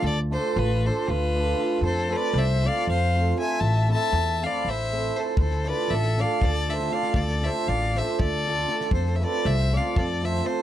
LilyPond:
<<
  \new Staff \with { instrumentName = "Fiddle" } { \time 7/8 \key d \minor \tempo 4 = 118 d''8 c''8 b'8 c''8 b'4. | c''8 d''8 e''8 f''8 f''4 gis''8 | a''8 a''4 f''8 e''4 c''8 | c''8 d''8 e''8 f''8 d''8 e''8 f''8 |
d''8 e''8 f''8 e''8 d''4. | c''16. e''32 d''8 e''8 f''8 d''8 e''8 c''8 | }
  \new Staff \with { instrumentName = "Violin" } { \time 7/8 \key d \minor a'8 a'8 f'8 a'8 f'4. | a'8 b'8 c''8 d''8 c''4 e''8 | e''8 e''4 d''8 c''4 a'8 | a'8 b'8 a'8 d''8 a'8 c''8 d''8 |
a'8 c''8 d''8 c''8 a'4. | a'16. c''32 b'8 c''8 d''8 a'8 c''8 a'8 | }
  \new Staff \with { instrumentName = "Hammered dulcimer" } { \time 7/8 \key d \minor r8 <a d' f' a'>8 r8 <a d' f' a'>8 r8 <a d' f' a'>8 <a d' f' a'>8 | r8 <a c' f' a'>8 r8 <a c' f' a'>8 r8 <a c' f' a'>8 <a c' f' a'>8 | r8 <a c' e' a'>8 r8 <a c' e' a'>8 r8 <a c' e' a'>8 <a c' e' a'>8 | r8 <a d' f' a'>8 r8 <a d' f' a'>8 r8 <a d' f' a'>8 <a d' f' a'>8 |
r8 <a d' f' a'>8 r8 <a d' f' a'>8 r8 <a d' f' a'>8 <a d' f' a'>8 | r8 <a c' f' a'>8 r8 <a c' f' a'>8 r8 <a c' f' a'>8 <a c' f' a'>8 | }
  \new Staff \with { instrumentName = "Upright bass" } { \clef bass \time 7/8 \key d \minor d,4 a,,4 d,4. | f,4 c,4 f,4. | a,,4 e,4 a,,4. | d,4 a,,4 d,4. |
d,4 a,,4 d,4. | f,4 c,4 f,4. | }
  \new DrumStaff \with { instrumentName = "Drums" } \drummode { \time 7/8 r4 r4 r4. | r4 r4 r4. | r4 r4 r4. | bd16 sn16 sn8 sn16 sn16 sn8 bd8 sn16 sn16 sn16 sn16 |
bd16 sn16 sn8 sn16 sn16 sn8 bd8 sn16 sn16 sn16 sn16 | bd16 sn16 sn8 sn16 sn16 sn8 bd8 sn16 sn16 sn8 | }
>>